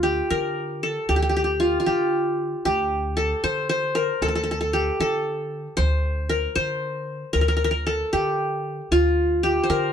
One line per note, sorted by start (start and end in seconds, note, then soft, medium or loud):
0.00 0.19 D2 loud
0.00 0.86 F4 medium
0.00 1.08 G4 medium
0.30 0.97 D3 medium
0.30 0.89 A#4 medium
0.83 2.00 A4 medium
1.09 1.75 D2 loud
1.09 1.16 G4 medium
1.16 1.22 G4 medium
1.22 1.29 G4 medium
1.29 1.36 G4 medium
1.36 1.44 G4 medium
1.44 1.86 G4 medium
1.60 1.79 F4 medium
1.80 3.14 F4 medium
1.86 2.54 D3 medium
1.86 2.65 G4 medium
2.65 3.32 D2 loud
2.65 3.91 G4 medium
3.17 4.01 A4 medium
3.44 4.10 D3 medium
3.44 3.69 C5 medium
3.69 4.75 C5 medium
3.95 4.28 A#4 medium
4.22 4.88 D2 loud
4.22 4.28 A4 medium
4.28 4.35 A4 medium
4.35 4.43 A4 medium
4.43 4.51 A4 medium
4.51 4.60 A4 medium
4.61 5.00 A4 medium
4.73 5.99 G4 medium
5.00 5.66 D3 loud
5.00 6.18 A4 medium
5.77 6.45 D2 loud
5.77 6.55 C5 loud
6.29 7.33 A#4 medium
6.55 7.23 D3 medium
6.55 7.61 C5 loud
7.33 8.02 D2 loud
7.33 7.41 A#4 loud
7.41 7.48 A#4 medium
7.48 7.56 A#4 medium
7.57 7.64 A#4 medium
7.64 7.71 A#4 medium
7.71 7.93 A#4 medium
7.87 9.04 A4 medium
8.13 8.80 D3 medium
8.13 9.38 G4 medium
8.91 9.58 D2 loud
8.91 9.93 F4 loud
9.43 9.93 G4 medium
9.63 9.93 C5 medium
9.70 9.93 D3 medium
9.70 9.93 A#4 loud